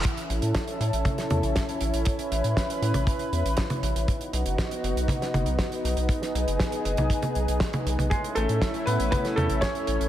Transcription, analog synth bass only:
X:1
M:4/4
L:1/16
Q:1/4=119
K:Alyd
V:1 name="Analog synth bass" clef=bass
z2 A,,, A,, z2 A,, A,,, z2 E,, A,,, z2 A,,, A,,, | z2 A,,, A,, z2 A,, A,,, z2 E,, A,,, z2 A,,, A,,, | z2 B,,, F,,, z2 F,,, B,,, z2 F,,, B,,, z2 B,,, B,,, | z2 B,,, F,,, z2 F,,, B,,, z2 B,,, B,,, z2 B,,, B,,, |
z2 A,,, A,, z2 A,, A,,, z2 E,, A,,, z2 A,,, A,,, |]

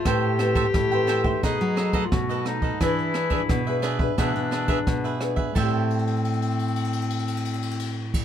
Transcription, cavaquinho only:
X:1
M:4/4
L:1/16
Q:1/4=87
K:Am
V:1 name="Cavaquinho"
[Aceg]2 [Aceg] [Aceg] z [ceg] [Aceg] [ceg] [^DB^d]2 [DABd] [DABd] z [ABd]2 [ABd] | [D^GBe]2 [DGBe] [DGBe] z [GBe] [DGBe] [GBe] [DGBe]2 [DGBe] [DGBe] z [GBe]2 [GBe] | [Aceg]16 |]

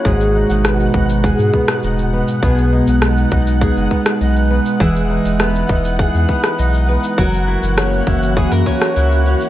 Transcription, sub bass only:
X:1
M:4/4
L:1/16
Q:1/4=101
K:Elyd
V:1 name="Sub bass" clef=bass
G,,,3 G,,,3 G,,,3 G,, z2 D,,,3 z | B,,,3 B,,,3 B,,,3 F,,, z2 B,,,3 z | E,,,3 E,,,3 E,,,3 E,, z2 B,,,3 z | F,,,3 F,,,3 F,,,3 F,, z2 C,,3 z |]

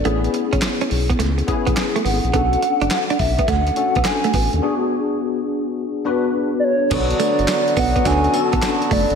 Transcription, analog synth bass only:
X:1
M:4/4
L:1/16
Q:"Swing 16ths" 1/4=105
K:Bdor
V:1 name="Analog synth bass" clef=bass
A,,,2 z G,,, z2 B,,,2 C,,2 z A,,, z2 G,,, ^A,,, | B,,,2 z F,,, z2 B,,,2 D,,2 z B,,, z2 A,,, ^D,, | z16 | B,,,2 z F,,, z2 B,,,2 D,,2 z A,,, z2 F,,, G,,, |]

